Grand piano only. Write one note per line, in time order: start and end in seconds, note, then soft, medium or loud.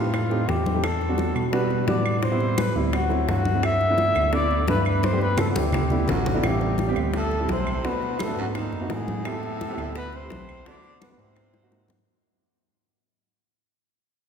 0.00 0.20 A3 medium
0.00 0.20 C4 medium
0.00 0.20 D#4 medium
0.00 0.20 G4 medium
0.30 0.61 A3 medium
0.30 0.61 C4 medium
0.30 0.61 D#4 medium
0.30 0.61 G4 medium
0.74 0.83 A3 medium
0.74 0.83 C4 medium
0.74 0.83 D#4 medium
0.74 0.83 G4 medium
1.09 1.40 G3 medium
1.09 1.40 B3 medium
1.09 1.40 D4 medium
1.09 1.40 F#4 medium
1.52 1.77 G3 medium
1.52 1.78 B3 medium
1.52 1.78 D4 medium
1.52 1.78 F#4 medium
1.88 2.19 G3 medium
1.88 2.19 B3 medium
1.88 2.19 D4 medium
1.88 2.19 F#4 medium
2.32 2.62 G3 medium
2.32 2.63 B3 medium
2.32 2.62 C4 medium
2.32 2.62 E4 medium
2.76 2.93 G3 medium
2.76 2.93 B3 medium
2.76 2.93 C4 medium
2.76 2.93 E4 medium
3.09 3.41 F#3 medium
3.09 3.41 A3 medium
3.09 3.41 C4 medium
3.09 3.41 E4 medium
3.54 3.63 F#3 medium
3.54 3.63 A3 medium
3.54 3.63 C4 medium
3.54 3.63 E4 medium
3.90 4.20 A3 medium
3.90 4.20 B3 medium
3.90 4.20 D4 medium
3.90 4.21 E4 medium
4.33 4.58 A3 medium
4.33 4.57 B3 medium
4.33 4.58 D4 medium
4.33 4.58 E4 medium
4.68 4.99 A3 medium
4.68 4.99 B3 medium
4.68 4.99 D4 medium
4.68 4.99 E4 medium
5.12 5.43 A3 medium
5.12 5.43 B3 medium
5.12 5.43 D4 medium
5.12 5.43 G4 medium
5.56 5.81 A3 medium
5.56 5.81 B3 medium
5.56 5.81 D4 medium
5.56 5.81 E4 medium
5.91 6.22 A3 medium
5.91 6.22 B3 medium
5.91 6.22 D4 medium
5.91 6.22 E4 medium
6.34 6.43 A3 medium
6.34 6.42 B3 medium
6.34 6.43 D4 medium
6.34 6.43 E4 medium
6.44 6.74 G3 medium
6.44 6.75 B3 medium
6.44 6.75 C4 medium
6.44 6.75 E4 medium
6.88 7.14 G3 medium
6.88 7.15 B3 medium
6.88 7.15 C4 medium
6.88 7.15 G4 medium
7.40 7.71 G3 medium
7.40 7.71 A3 medium
7.40 7.71 C4 medium
7.40 7.71 E4 medium
7.84 8.15 A3 medium
7.84 8.15 B3 medium
7.84 8.15 D4 medium
7.84 8.15 F#4 medium
8.28 8.54 A3 medium
8.28 8.54 B3 medium
8.28 8.54 D4 medium
8.28 8.55 F#4 medium
8.81 9.12 A#3 medium
8.81 9.12 C4 medium
8.81 9.12 D#4 medium
8.81 9.12 F#4 medium
9.25 9.56 B3 medium
9.25 9.56 C4 medium
9.25 9.56 E4 medium
9.25 9.56 G4 medium
9.69 9.95 B3 medium
9.69 9.96 C4 medium
9.69 9.95 E4 medium
9.69 9.96 G4 medium
10.23 10.53 A3 medium
10.23 10.53 C4 medium
10.23 10.53 E4 medium
10.23 10.53 G4 medium
10.66 10.97 A3 medium
10.66 10.97 B3 medium
10.66 10.97 D4 medium
10.66 10.97 F#4 medium
11.09 11.36 A3 medium
11.09 11.36 B3 medium
11.09 11.36 D4 medium
11.09 11.36 F#4 medium
11.63 11.94 A#3 medium
11.63 11.94 C4 medium
11.63 11.94 D#4 medium
11.63 11.94 F#4 medium